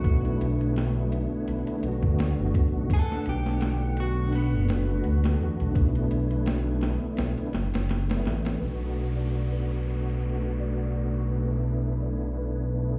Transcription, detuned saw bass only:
0, 0, Header, 1, 2, 480
1, 0, Start_track
1, 0, Key_signature, 2, "minor"
1, 0, Tempo, 714286
1, 24, Time_signature, 4, 2, 24, 8
1, 8728, End_track
2, 0, Start_track
2, 0, Title_t, "Detuned saw bass"
2, 0, Program_c, 0, 39
2, 0, Note_on_c, 0, 35, 107
2, 251, Note_off_c, 0, 35, 0
2, 278, Note_on_c, 0, 35, 95
2, 859, Note_off_c, 0, 35, 0
2, 998, Note_on_c, 0, 35, 77
2, 1109, Note_off_c, 0, 35, 0
2, 1232, Note_on_c, 0, 35, 86
2, 1365, Note_on_c, 0, 38, 89
2, 1375, Note_off_c, 0, 35, 0
2, 1569, Note_off_c, 0, 38, 0
2, 1608, Note_on_c, 0, 30, 82
2, 1697, Note_off_c, 0, 30, 0
2, 1849, Note_on_c, 0, 35, 109
2, 1937, Note_off_c, 0, 35, 0
2, 2198, Note_on_c, 0, 35, 93
2, 3044, Note_on_c, 0, 30, 100
2, 3054, Note_off_c, 0, 35, 0
2, 3367, Note_off_c, 0, 30, 0
2, 3396, Note_on_c, 0, 38, 90
2, 3605, Note_off_c, 0, 38, 0
2, 3634, Note_on_c, 0, 40, 82
2, 3747, Note_off_c, 0, 40, 0
2, 3766, Note_on_c, 0, 35, 105
2, 4088, Note_off_c, 0, 35, 0
2, 4111, Note_on_c, 0, 35, 99
2, 4696, Note_off_c, 0, 35, 0
2, 4831, Note_on_c, 0, 35, 78
2, 4945, Note_off_c, 0, 35, 0
2, 5070, Note_on_c, 0, 30, 81
2, 5185, Note_off_c, 0, 30, 0
2, 5203, Note_on_c, 0, 30, 95
2, 5526, Note_off_c, 0, 30, 0
2, 5547, Note_on_c, 0, 33, 95
2, 5760, Note_off_c, 0, 33, 0
2, 5790, Note_on_c, 0, 35, 74
2, 8728, Note_off_c, 0, 35, 0
2, 8728, End_track
0, 0, End_of_file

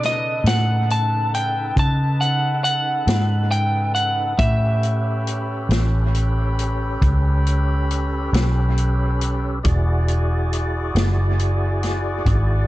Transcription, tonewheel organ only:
0, 0, Header, 1, 2, 480
1, 0, Start_track
1, 0, Tempo, 874636
1, 2410, Time_signature, 12, 3, 24, 8
1, 6953, End_track
2, 0, Start_track
2, 0, Title_t, "Tonewheel organ"
2, 0, Program_c, 0, 16
2, 0, Note_on_c, 0, 49, 64
2, 0, Note_on_c, 0, 63, 63
2, 0, Note_on_c, 0, 69, 66
2, 0, Note_on_c, 0, 71, 64
2, 2382, Note_off_c, 0, 49, 0
2, 2382, Note_off_c, 0, 63, 0
2, 2384, Note_off_c, 0, 69, 0
2, 2384, Note_off_c, 0, 71, 0
2, 2401, Note_on_c, 0, 61, 65
2, 2401, Note_on_c, 0, 67, 70
2, 2401, Note_on_c, 0, 69, 63
2, 2401, Note_on_c, 0, 71, 67
2, 5264, Note_off_c, 0, 61, 0
2, 5264, Note_off_c, 0, 69, 0
2, 5265, Note_off_c, 0, 67, 0
2, 5265, Note_off_c, 0, 71, 0
2, 5287, Note_on_c, 0, 74, 67
2, 5289, Note_on_c, 0, 66, 69
2, 5291, Note_on_c, 0, 68, 65
2, 5292, Note_on_c, 0, 64, 67
2, 6953, Note_off_c, 0, 64, 0
2, 6953, Note_off_c, 0, 66, 0
2, 6953, Note_off_c, 0, 68, 0
2, 6953, Note_off_c, 0, 74, 0
2, 6953, End_track
0, 0, End_of_file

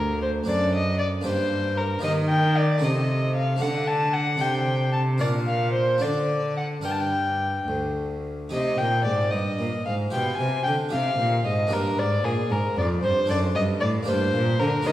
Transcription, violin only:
0, 0, Header, 1, 2, 480
1, 0, Start_track
1, 0, Key_signature, -2, "minor"
1, 0, Tempo, 524017
1, 438, Time_signature, 6, 3, 24, 8
1, 4277, Tempo, 539568
1, 5717, Tempo, 554529
1, 7653, Key_signature, -3, "minor"
1, 8117, Tempo, 526778
1, 13458, End_track
2, 0, Start_track
2, 0, Title_t, "Violin"
2, 0, Program_c, 0, 40
2, 0, Note_on_c, 0, 70, 60
2, 190, Note_off_c, 0, 70, 0
2, 202, Note_on_c, 0, 72, 69
2, 276, Note_off_c, 0, 72, 0
2, 440, Note_on_c, 0, 74, 68
2, 673, Note_off_c, 0, 74, 0
2, 685, Note_on_c, 0, 75, 73
2, 897, Note_off_c, 0, 75, 0
2, 903, Note_on_c, 0, 74, 80
2, 976, Note_off_c, 0, 74, 0
2, 1157, Note_on_c, 0, 72, 77
2, 1623, Note_on_c, 0, 70, 72
2, 1637, Note_off_c, 0, 72, 0
2, 1863, Note_off_c, 0, 70, 0
2, 1868, Note_on_c, 0, 75, 78
2, 1941, Note_off_c, 0, 75, 0
2, 2098, Note_on_c, 0, 79, 79
2, 2358, Note_on_c, 0, 74, 71
2, 2372, Note_off_c, 0, 79, 0
2, 2598, Note_on_c, 0, 75, 63
2, 2611, Note_off_c, 0, 74, 0
2, 3067, Note_off_c, 0, 75, 0
2, 3072, Note_on_c, 0, 77, 68
2, 3312, Note_on_c, 0, 78, 68
2, 3326, Note_off_c, 0, 77, 0
2, 3548, Note_on_c, 0, 81, 77
2, 3562, Note_off_c, 0, 78, 0
2, 3787, Note_on_c, 0, 78, 77
2, 3801, Note_off_c, 0, 81, 0
2, 4037, Note_on_c, 0, 79, 67
2, 4051, Note_off_c, 0, 78, 0
2, 4500, Note_off_c, 0, 79, 0
2, 4505, Note_on_c, 0, 81, 70
2, 4576, Note_off_c, 0, 81, 0
2, 4753, Note_on_c, 0, 74, 72
2, 4824, Note_off_c, 0, 74, 0
2, 4991, Note_on_c, 0, 77, 72
2, 5217, Note_off_c, 0, 77, 0
2, 5222, Note_on_c, 0, 72, 75
2, 5475, Note_on_c, 0, 74, 60
2, 5488, Note_off_c, 0, 72, 0
2, 5958, Note_off_c, 0, 74, 0
2, 5962, Note_on_c, 0, 78, 63
2, 6031, Note_off_c, 0, 78, 0
2, 6199, Note_on_c, 0, 79, 62
2, 6256, Note_on_c, 0, 81, 50
2, 6269, Note_off_c, 0, 79, 0
2, 6326, Note_on_c, 0, 79, 64
2, 6339, Note_off_c, 0, 81, 0
2, 6926, Note_off_c, 0, 79, 0
2, 7647, Note_on_c, 0, 75, 69
2, 7873, Note_on_c, 0, 79, 70
2, 7886, Note_off_c, 0, 75, 0
2, 8101, Note_off_c, 0, 79, 0
2, 8107, Note_on_c, 0, 74, 66
2, 8344, Note_on_c, 0, 75, 58
2, 8357, Note_off_c, 0, 74, 0
2, 8837, Note_off_c, 0, 75, 0
2, 8842, Note_on_c, 0, 77, 68
2, 8915, Note_off_c, 0, 77, 0
2, 9084, Note_on_c, 0, 79, 66
2, 9304, Note_off_c, 0, 79, 0
2, 9310, Note_on_c, 0, 80, 75
2, 9549, Note_off_c, 0, 80, 0
2, 9554, Note_on_c, 0, 79, 77
2, 9627, Note_off_c, 0, 79, 0
2, 9811, Note_on_c, 0, 77, 76
2, 10286, Note_off_c, 0, 77, 0
2, 10303, Note_on_c, 0, 75, 67
2, 10547, Note_on_c, 0, 70, 70
2, 10561, Note_off_c, 0, 75, 0
2, 10784, Note_on_c, 0, 74, 73
2, 10798, Note_off_c, 0, 70, 0
2, 11024, Note_on_c, 0, 68, 70
2, 11037, Note_off_c, 0, 74, 0
2, 11267, Note_on_c, 0, 70, 61
2, 11281, Note_off_c, 0, 68, 0
2, 11503, Note_off_c, 0, 70, 0
2, 11508, Note_on_c, 0, 74, 70
2, 11581, Note_off_c, 0, 74, 0
2, 11731, Note_on_c, 0, 72, 77
2, 11970, Note_off_c, 0, 72, 0
2, 11982, Note_on_c, 0, 74, 79
2, 12055, Note_off_c, 0, 74, 0
2, 12209, Note_on_c, 0, 75, 81
2, 12281, Note_off_c, 0, 75, 0
2, 12440, Note_on_c, 0, 74, 78
2, 12513, Note_off_c, 0, 74, 0
2, 12686, Note_on_c, 0, 72, 81
2, 13159, Note_on_c, 0, 70, 78
2, 13173, Note_off_c, 0, 72, 0
2, 13406, Note_on_c, 0, 75, 84
2, 13419, Note_off_c, 0, 70, 0
2, 13458, Note_off_c, 0, 75, 0
2, 13458, End_track
0, 0, End_of_file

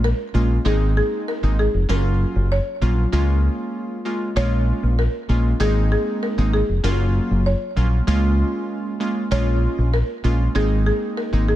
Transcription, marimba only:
0, 0, Header, 1, 2, 480
1, 0, Start_track
1, 0, Key_signature, -5, "major"
1, 0, Tempo, 618557
1, 1466, Time_signature, 4, 2, 24, 8
1, 8968, End_track
2, 0, Start_track
2, 0, Title_t, "Marimba"
2, 0, Program_c, 0, 12
2, 34, Note_on_c, 0, 70, 102
2, 479, Note_off_c, 0, 70, 0
2, 513, Note_on_c, 0, 68, 90
2, 745, Note_off_c, 0, 68, 0
2, 754, Note_on_c, 0, 68, 85
2, 996, Note_on_c, 0, 70, 96
2, 997, Note_off_c, 0, 68, 0
2, 1236, Note_on_c, 0, 68, 86
2, 1238, Note_off_c, 0, 70, 0
2, 1454, Note_off_c, 0, 68, 0
2, 1476, Note_on_c, 0, 70, 91
2, 1954, Note_on_c, 0, 73, 93
2, 1965, Note_off_c, 0, 70, 0
2, 3119, Note_off_c, 0, 73, 0
2, 3389, Note_on_c, 0, 73, 115
2, 3836, Note_off_c, 0, 73, 0
2, 3871, Note_on_c, 0, 70, 102
2, 4351, Note_on_c, 0, 68, 95
2, 4362, Note_off_c, 0, 70, 0
2, 4572, Note_off_c, 0, 68, 0
2, 4593, Note_on_c, 0, 68, 88
2, 4833, Note_on_c, 0, 70, 94
2, 4836, Note_off_c, 0, 68, 0
2, 5071, Note_on_c, 0, 68, 92
2, 5076, Note_off_c, 0, 70, 0
2, 5292, Note_off_c, 0, 68, 0
2, 5311, Note_on_c, 0, 70, 95
2, 5791, Note_on_c, 0, 73, 91
2, 5803, Note_off_c, 0, 70, 0
2, 6957, Note_off_c, 0, 73, 0
2, 7230, Note_on_c, 0, 73, 105
2, 7710, Note_on_c, 0, 70, 97
2, 7722, Note_off_c, 0, 73, 0
2, 8157, Note_off_c, 0, 70, 0
2, 8192, Note_on_c, 0, 68, 94
2, 8421, Note_off_c, 0, 68, 0
2, 8431, Note_on_c, 0, 68, 88
2, 8671, Note_on_c, 0, 70, 91
2, 8675, Note_off_c, 0, 68, 0
2, 8913, Note_on_c, 0, 68, 90
2, 8916, Note_off_c, 0, 70, 0
2, 8968, Note_off_c, 0, 68, 0
2, 8968, End_track
0, 0, End_of_file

